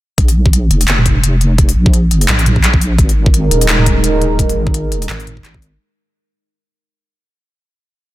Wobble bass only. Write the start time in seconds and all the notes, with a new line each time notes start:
0.18 A#1
0.70 F1
1.76 A#1
2.28 A#1
2.99 G#1
3.51 D#1
4.57 G#1
5.09 G#1
5.44 G#1